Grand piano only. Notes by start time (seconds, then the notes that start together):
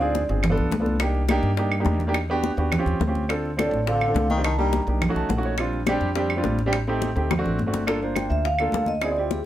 0.00 C4 D4 F4 G#4
0.29 C4 D4 F4 G#4
0.50 B3 D4 F4 A4
0.80 B3 D4 F4 A4
1.01 A#3 D4 D#4 G4
1.28 A#3 D4 D#4 G4
1.58 A#3 D4 D#4 G4
1.79 A#3 D4 D#4 G4
2.07 A#3 D4 D#4 G4
2.30 B3 D4 F#4 G4
2.57 B3 D4 F#4 G4
2.78 C4 C#4 F4 G4
3.07 C4 C#4 F4 G4
3.29 C4 D4 F4 A4
3.57 C4 D4 F4 A4
3.86 C4 D4 F4 A4
4.08 C4 D4 F4 A4
4.36 C4 D4 F4 G4
4.58 A#3 D4 D#4 G4
4.87 A#3 D4 D#4 G4
5.09 A3 C#4 D#4 F#4
5.16 A5
5.30 F#5
5.36 A3 C#4 D#4 F#4
5.45 C#5
5.59 G3 C4 D4 F4
5.88 G3 C4 D4 G4
6.16 G3 C4 D4 G4
6.36 G3 C4 D4 F4
6.66 G3 C4 D4 G4
6.88 A3 C4 D#4 G4
7.15 A3 C4 D#4 G4
7.38 A3 C4 D4 F#4
7.66 A3 C4 D4 F#4
7.87 A#3 D4 F4 A4
8.02 A#3 D4 F4 C5
8.59 A#3 D4 F4 A4
9.02 C4 E4 F4 G#4
9.10 C4 E4 F4 G#4
9.17 C4 E4 F4 G4